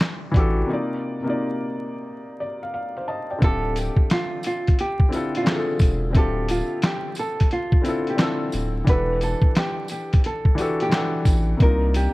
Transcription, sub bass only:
0, 0, Header, 1, 2, 480
1, 0, Start_track
1, 0, Tempo, 681818
1, 486, Time_signature, 4, 2, 24, 8
1, 8542, End_track
2, 0, Start_track
2, 0, Title_t, "Sub bass"
2, 0, Program_c, 0, 38
2, 244, Note_on_c, 0, 33, 100
2, 447, Note_off_c, 0, 33, 0
2, 2411, Note_on_c, 0, 26, 101
2, 2744, Note_off_c, 0, 26, 0
2, 4084, Note_on_c, 0, 28, 99
2, 4329, Note_on_c, 0, 26, 102
2, 4340, Note_off_c, 0, 28, 0
2, 4662, Note_off_c, 0, 26, 0
2, 6011, Note_on_c, 0, 26, 88
2, 6211, Note_off_c, 0, 26, 0
2, 6248, Note_on_c, 0, 28, 104
2, 6582, Note_off_c, 0, 28, 0
2, 7925, Note_on_c, 0, 33, 87
2, 8127, Note_off_c, 0, 33, 0
2, 8170, Note_on_c, 0, 36, 100
2, 8503, Note_off_c, 0, 36, 0
2, 8542, End_track
0, 0, End_of_file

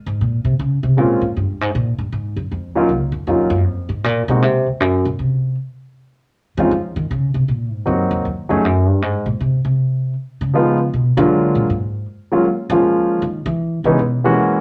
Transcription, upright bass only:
0, 0, Header, 1, 2, 480
1, 0, Start_track
1, 0, Key_signature, -5, "minor"
1, 0, Tempo, 382653
1, 1698, Time_signature, 4, 2, 24, 8
1, 18322, End_track
2, 0, Start_track
2, 0, Title_t, "Upright bass"
2, 0, Program_c, 0, 32
2, 81, Note_on_c, 0, 44, 86
2, 247, Note_off_c, 0, 44, 0
2, 264, Note_on_c, 0, 46, 79
2, 551, Note_off_c, 0, 46, 0
2, 559, Note_on_c, 0, 48, 83
2, 726, Note_off_c, 0, 48, 0
2, 745, Note_on_c, 0, 49, 86
2, 1035, Note_off_c, 0, 49, 0
2, 1043, Note_on_c, 0, 48, 86
2, 1224, Note_off_c, 0, 48, 0
2, 1224, Note_on_c, 0, 46, 80
2, 1516, Note_off_c, 0, 46, 0
2, 1523, Note_on_c, 0, 44, 79
2, 1688, Note_off_c, 0, 44, 0
2, 1713, Note_on_c, 0, 43, 74
2, 2021, Note_off_c, 0, 43, 0
2, 2021, Note_on_c, 0, 44, 82
2, 2177, Note_off_c, 0, 44, 0
2, 2194, Note_on_c, 0, 46, 91
2, 2482, Note_off_c, 0, 46, 0
2, 2490, Note_on_c, 0, 43, 82
2, 2652, Note_off_c, 0, 43, 0
2, 2665, Note_on_c, 0, 44, 82
2, 2958, Note_off_c, 0, 44, 0
2, 2966, Note_on_c, 0, 42, 78
2, 3130, Note_off_c, 0, 42, 0
2, 3155, Note_on_c, 0, 41, 74
2, 3452, Note_off_c, 0, 41, 0
2, 3452, Note_on_c, 0, 39, 76
2, 3624, Note_on_c, 0, 37, 73
2, 3643, Note_off_c, 0, 39, 0
2, 3905, Note_off_c, 0, 37, 0
2, 3913, Note_on_c, 0, 39, 81
2, 4083, Note_off_c, 0, 39, 0
2, 4101, Note_on_c, 0, 41, 80
2, 4384, Note_off_c, 0, 41, 0
2, 4391, Note_on_c, 0, 42, 97
2, 4593, Note_off_c, 0, 42, 0
2, 4593, Note_on_c, 0, 41, 73
2, 4870, Note_off_c, 0, 41, 0
2, 4878, Note_on_c, 0, 44, 81
2, 5071, Note_off_c, 0, 44, 0
2, 5071, Note_on_c, 0, 46, 78
2, 5363, Note_off_c, 0, 46, 0
2, 5371, Note_on_c, 0, 47, 94
2, 5549, Note_off_c, 0, 47, 0
2, 5549, Note_on_c, 0, 48, 96
2, 5845, Note_off_c, 0, 48, 0
2, 5852, Note_on_c, 0, 39, 48
2, 6026, Note_off_c, 0, 39, 0
2, 6026, Note_on_c, 0, 42, 70
2, 6328, Note_off_c, 0, 42, 0
2, 6339, Note_on_c, 0, 46, 84
2, 6497, Note_off_c, 0, 46, 0
2, 6510, Note_on_c, 0, 48, 77
2, 6951, Note_off_c, 0, 48, 0
2, 8248, Note_on_c, 0, 52, 102
2, 8411, Note_off_c, 0, 52, 0
2, 8421, Note_on_c, 0, 53, 89
2, 8726, Note_off_c, 0, 53, 0
2, 8731, Note_on_c, 0, 51, 88
2, 8893, Note_off_c, 0, 51, 0
2, 8915, Note_on_c, 0, 49, 86
2, 9202, Note_off_c, 0, 49, 0
2, 9210, Note_on_c, 0, 48, 84
2, 9372, Note_off_c, 0, 48, 0
2, 9386, Note_on_c, 0, 46, 76
2, 9682, Note_off_c, 0, 46, 0
2, 9682, Note_on_c, 0, 44, 89
2, 9848, Note_off_c, 0, 44, 0
2, 9869, Note_on_c, 0, 42, 74
2, 10162, Note_off_c, 0, 42, 0
2, 10170, Note_on_c, 0, 41, 90
2, 10332, Note_off_c, 0, 41, 0
2, 10349, Note_on_c, 0, 39, 67
2, 10650, Note_off_c, 0, 39, 0
2, 10667, Note_on_c, 0, 41, 74
2, 10847, Note_off_c, 0, 41, 0
2, 10847, Note_on_c, 0, 42, 75
2, 11142, Note_off_c, 0, 42, 0
2, 11142, Note_on_c, 0, 43, 79
2, 11317, Note_off_c, 0, 43, 0
2, 11317, Note_on_c, 0, 44, 83
2, 11606, Note_off_c, 0, 44, 0
2, 11614, Note_on_c, 0, 46, 84
2, 11774, Note_off_c, 0, 46, 0
2, 11798, Note_on_c, 0, 48, 81
2, 12094, Note_off_c, 0, 48, 0
2, 12101, Note_on_c, 0, 48, 89
2, 12697, Note_off_c, 0, 48, 0
2, 13058, Note_on_c, 0, 49, 87
2, 13655, Note_off_c, 0, 49, 0
2, 13717, Note_on_c, 0, 47, 78
2, 14007, Note_off_c, 0, 47, 0
2, 14015, Note_on_c, 0, 50, 103
2, 14460, Note_off_c, 0, 50, 0
2, 14491, Note_on_c, 0, 46, 83
2, 14652, Note_off_c, 0, 46, 0
2, 14674, Note_on_c, 0, 44, 75
2, 15113, Note_off_c, 0, 44, 0
2, 15926, Note_on_c, 0, 53, 107
2, 16530, Note_off_c, 0, 53, 0
2, 16583, Note_on_c, 0, 51, 87
2, 16873, Note_off_c, 0, 51, 0
2, 16881, Note_on_c, 0, 52, 100
2, 17334, Note_off_c, 0, 52, 0
2, 17364, Note_on_c, 0, 49, 83
2, 17529, Note_off_c, 0, 49, 0
2, 17551, Note_on_c, 0, 47, 79
2, 17993, Note_off_c, 0, 47, 0
2, 18322, End_track
0, 0, End_of_file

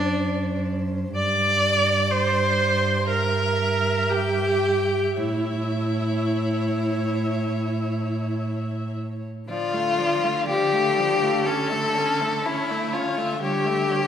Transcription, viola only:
0, 0, Header, 1, 2, 480
1, 0, Start_track
1, 0, Tempo, 956938
1, 583, Time_signature, 4, 2, 24, 8
1, 1059, Tempo, 1000000
1, 2019, Tempo, 1077199
1, 4419, Tempo, 986842
1, 5859, Tempo, 953895
1, 6671, End_track
2, 0, Start_track
2, 0, Title_t, "Viola"
2, 0, Program_c, 0, 41
2, 0, Note_on_c, 0, 62, 85
2, 343, Note_off_c, 0, 62, 0
2, 581, Note_on_c, 0, 74, 89
2, 1057, Note_on_c, 0, 72, 81
2, 1064, Note_off_c, 0, 74, 0
2, 1526, Note_off_c, 0, 72, 0
2, 1529, Note_on_c, 0, 70, 76
2, 2014, Note_on_c, 0, 67, 78
2, 2021, Note_off_c, 0, 70, 0
2, 2490, Note_on_c, 0, 64, 66
2, 2497, Note_off_c, 0, 67, 0
2, 4184, Note_off_c, 0, 64, 0
2, 4415, Note_on_c, 0, 53, 53
2, 4534, Note_on_c, 0, 57, 50
2, 4541, Note_off_c, 0, 53, 0
2, 4657, Note_on_c, 0, 53, 56
2, 4664, Note_off_c, 0, 57, 0
2, 4781, Note_on_c, 0, 57, 52
2, 4788, Note_off_c, 0, 53, 0
2, 4896, Note_off_c, 0, 57, 0
2, 4899, Note_on_c, 0, 53, 51
2, 5019, Note_on_c, 0, 57, 52
2, 5026, Note_off_c, 0, 53, 0
2, 5142, Note_on_c, 0, 53, 55
2, 5150, Note_off_c, 0, 57, 0
2, 5262, Note_on_c, 0, 57, 55
2, 5269, Note_off_c, 0, 53, 0
2, 5376, Note_off_c, 0, 57, 0
2, 5379, Note_on_c, 0, 61, 52
2, 5500, Note_on_c, 0, 57, 47
2, 5507, Note_off_c, 0, 61, 0
2, 5623, Note_on_c, 0, 61, 51
2, 5630, Note_off_c, 0, 57, 0
2, 5742, Note_on_c, 0, 57, 44
2, 5749, Note_off_c, 0, 61, 0
2, 5856, Note_off_c, 0, 57, 0
2, 5859, Note_on_c, 0, 61, 50
2, 5986, Note_on_c, 0, 57, 55
2, 5993, Note_off_c, 0, 61, 0
2, 6101, Note_on_c, 0, 61, 54
2, 6109, Note_off_c, 0, 57, 0
2, 6220, Note_on_c, 0, 57, 49
2, 6227, Note_off_c, 0, 61, 0
2, 6333, Note_off_c, 0, 57, 0
2, 6336, Note_on_c, 0, 55, 52
2, 6460, Note_on_c, 0, 57, 46
2, 6467, Note_off_c, 0, 55, 0
2, 6576, Note_on_c, 0, 55, 52
2, 6583, Note_off_c, 0, 57, 0
2, 6671, Note_off_c, 0, 55, 0
2, 6671, End_track
0, 0, End_of_file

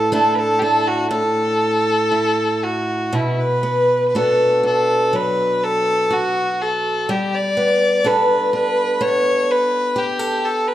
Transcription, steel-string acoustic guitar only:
0, 0, Header, 1, 2, 480
1, 0, Start_track
1, 0, Tempo, 1000000
1, 1505, Time_signature, 4, 2, 24, 8
1, 2463, Tempo, 974026
1, 3423, Tempo, 952381
1, 5270, End_track
2, 0, Start_track
2, 0, Title_t, "Steel-string acoustic guitar"
2, 0, Program_c, 0, 25
2, 0, Note_on_c, 0, 45, 62
2, 0, Note_on_c, 0, 57, 42
2, 55, Note_off_c, 0, 57, 0
2, 57, Note_on_c, 0, 57, 43
2, 60, Note_on_c, 0, 62, 45
2, 63, Note_on_c, 0, 64, 48
2, 291, Note_off_c, 0, 62, 0
2, 296, Note_on_c, 0, 62, 40
2, 525, Note_off_c, 0, 45, 0
2, 531, Note_on_c, 0, 45, 55
2, 582, Note_off_c, 0, 57, 0
2, 583, Note_off_c, 0, 62, 0
2, 585, Note_off_c, 0, 64, 0
2, 1016, Note_on_c, 0, 64, 39
2, 1498, Note_off_c, 0, 45, 0
2, 1500, Note_on_c, 0, 47, 52
2, 1550, Note_off_c, 0, 64, 0
2, 1742, Note_on_c, 0, 59, 36
2, 1989, Note_off_c, 0, 59, 0
2, 1991, Note_on_c, 0, 59, 41
2, 1996, Note_on_c, 0, 62, 37
2, 1996, Note_on_c, 0, 66, 46
2, 2222, Note_off_c, 0, 62, 0
2, 2224, Note_on_c, 0, 62, 34
2, 2462, Note_on_c, 0, 54, 44
2, 2936, Note_off_c, 0, 66, 0
2, 2942, Note_on_c, 0, 66, 41
2, 3423, Note_off_c, 0, 47, 0
2, 3424, Note_off_c, 0, 54, 0
2, 3428, Note_on_c, 0, 55, 63
2, 3472, Note_off_c, 0, 66, 0
2, 3668, Note_off_c, 0, 59, 0
2, 3670, Note_on_c, 0, 59, 39
2, 3903, Note_off_c, 0, 59, 0
2, 3909, Note_off_c, 0, 62, 0
2, 3909, Note_on_c, 0, 59, 47
2, 3911, Note_on_c, 0, 62, 46
2, 3917, Note_on_c, 0, 69, 49
2, 4149, Note_off_c, 0, 62, 0
2, 4155, Note_on_c, 0, 62, 47
2, 4388, Note_off_c, 0, 59, 0
2, 4394, Note_on_c, 0, 59, 52
2, 4872, Note_off_c, 0, 69, 0
2, 4874, Note_on_c, 0, 67, 48
2, 4992, Note_off_c, 0, 67, 0
2, 4992, Note_on_c, 0, 69, 49
2, 5270, Note_off_c, 0, 55, 0
2, 5270, Note_off_c, 0, 59, 0
2, 5270, Note_off_c, 0, 62, 0
2, 5270, Note_off_c, 0, 69, 0
2, 5270, End_track
0, 0, End_of_file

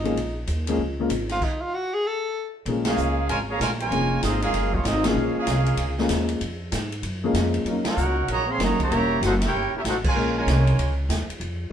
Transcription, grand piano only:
0, 0, Header, 1, 2, 480
1, 0, Start_track
1, 0, Key_signature, -5, "minor"
1, 0, Tempo, 312012
1, 262, Time_signature, 4, 2, 24, 8
1, 18033, End_track
2, 0, Start_track
2, 0, Title_t, "Grand piano"
2, 0, Program_c, 0, 0
2, 63, Note_on_c, 0, 53, 70
2, 76, Note_on_c, 0, 56, 67
2, 76, Note_on_c, 0, 58, 67
2, 78, Note_on_c, 0, 61, 63
2, 90, Note_on_c, 0, 68, 80
2, 232, Note_off_c, 0, 53, 0
2, 239, Note_off_c, 0, 56, 0
2, 239, Note_off_c, 0, 58, 0
2, 240, Note_off_c, 0, 61, 0
2, 246, Note_off_c, 0, 68, 0
2, 1056, Note_on_c, 0, 53, 78
2, 1060, Note_on_c, 0, 56, 71
2, 1063, Note_on_c, 0, 58, 67
2, 1070, Note_on_c, 0, 61, 68
2, 1081, Note_on_c, 0, 68, 87
2, 1209, Note_off_c, 0, 53, 0
2, 1211, Note_off_c, 0, 56, 0
2, 1212, Note_off_c, 0, 58, 0
2, 1216, Note_off_c, 0, 61, 0
2, 1221, Note_off_c, 0, 68, 0
2, 1529, Note_on_c, 0, 56, 63
2, 1537, Note_on_c, 0, 53, 68
2, 1546, Note_on_c, 0, 58, 67
2, 1548, Note_on_c, 0, 61, 64
2, 1559, Note_on_c, 0, 65, 76
2, 1685, Note_off_c, 0, 56, 0
2, 1689, Note_off_c, 0, 53, 0
2, 1694, Note_off_c, 0, 58, 0
2, 1695, Note_off_c, 0, 61, 0
2, 1700, Note_off_c, 0, 65, 0
2, 4111, Note_on_c, 0, 53, 58
2, 4120, Note_on_c, 0, 58, 52
2, 4122, Note_on_c, 0, 56, 47
2, 4129, Note_on_c, 0, 61, 54
2, 4132, Note_on_c, 0, 68, 64
2, 4829, Note_off_c, 0, 53, 0
2, 4833, Note_off_c, 0, 58, 0
2, 4834, Note_off_c, 0, 56, 0
2, 4838, Note_off_c, 0, 61, 0
2, 4839, Note_off_c, 0, 68, 0
2, 6027, Note_on_c, 0, 53, 59
2, 6030, Note_on_c, 0, 56, 51
2, 6035, Note_on_c, 0, 61, 52
2, 6038, Note_on_c, 0, 58, 51
2, 6049, Note_on_c, 0, 68, 60
2, 6746, Note_off_c, 0, 53, 0
2, 6748, Note_off_c, 0, 56, 0
2, 6750, Note_off_c, 0, 61, 0
2, 6752, Note_off_c, 0, 58, 0
2, 6758, Note_off_c, 0, 68, 0
2, 7775, Note_on_c, 0, 53, 78
2, 7782, Note_on_c, 0, 56, 72
2, 7783, Note_on_c, 0, 58, 69
2, 7791, Note_on_c, 0, 68, 80
2, 7796, Note_on_c, 0, 61, 74
2, 8390, Note_off_c, 0, 53, 0
2, 8393, Note_off_c, 0, 56, 0
2, 8394, Note_off_c, 0, 58, 0
2, 8398, Note_off_c, 0, 68, 0
2, 8400, Note_off_c, 0, 61, 0
2, 9218, Note_on_c, 0, 53, 71
2, 9227, Note_on_c, 0, 56, 66
2, 9229, Note_on_c, 0, 58, 72
2, 9237, Note_on_c, 0, 61, 65
2, 9244, Note_on_c, 0, 68, 81
2, 9832, Note_off_c, 0, 53, 0
2, 9836, Note_off_c, 0, 56, 0
2, 9837, Note_off_c, 0, 58, 0
2, 9841, Note_off_c, 0, 61, 0
2, 9845, Note_off_c, 0, 68, 0
2, 11134, Note_on_c, 0, 53, 73
2, 11143, Note_on_c, 0, 58, 70
2, 11153, Note_on_c, 0, 56, 72
2, 11156, Note_on_c, 0, 68, 79
2, 11160, Note_on_c, 0, 61, 64
2, 11750, Note_off_c, 0, 53, 0
2, 11754, Note_off_c, 0, 58, 0
2, 11759, Note_off_c, 0, 56, 0
2, 11761, Note_off_c, 0, 68, 0
2, 11763, Note_off_c, 0, 61, 0
2, 11795, Note_on_c, 0, 54, 61
2, 11800, Note_on_c, 0, 58, 55
2, 11807, Note_on_c, 0, 61, 59
2, 11811, Note_on_c, 0, 63, 53
2, 11818, Note_on_c, 0, 70, 64
2, 12061, Note_off_c, 0, 54, 0
2, 12063, Note_off_c, 0, 58, 0
2, 12066, Note_off_c, 0, 61, 0
2, 12068, Note_off_c, 0, 63, 0
2, 12072, Note_off_c, 0, 70, 0
2, 13227, Note_on_c, 0, 54, 69
2, 13227, Note_on_c, 0, 58, 65
2, 13238, Note_on_c, 0, 63, 61
2, 13239, Note_on_c, 0, 61, 64
2, 13246, Note_on_c, 0, 70, 77
2, 13497, Note_off_c, 0, 54, 0
2, 13497, Note_off_c, 0, 58, 0
2, 13502, Note_off_c, 0, 63, 0
2, 13503, Note_off_c, 0, 61, 0
2, 13506, Note_off_c, 0, 70, 0
2, 13716, Note_on_c, 0, 58, 58
2, 13718, Note_on_c, 0, 55, 58
2, 13722, Note_on_c, 0, 61, 55
2, 13734, Note_on_c, 0, 64, 54
2, 13738, Note_on_c, 0, 70, 70
2, 14431, Note_off_c, 0, 58, 0
2, 14432, Note_off_c, 0, 55, 0
2, 14434, Note_off_c, 0, 61, 0
2, 14440, Note_off_c, 0, 64, 0
2, 14442, Note_off_c, 0, 70, 0
2, 15622, Note_on_c, 0, 56, 58
2, 15626, Note_on_c, 0, 58, 55
2, 15630, Note_on_c, 0, 61, 54
2, 15639, Note_on_c, 0, 65, 57
2, 15642, Note_on_c, 0, 70, 71
2, 16344, Note_off_c, 0, 56, 0
2, 16346, Note_off_c, 0, 58, 0
2, 16348, Note_off_c, 0, 61, 0
2, 16353, Note_off_c, 0, 65, 0
2, 16354, Note_off_c, 0, 70, 0
2, 18033, End_track
0, 0, End_of_file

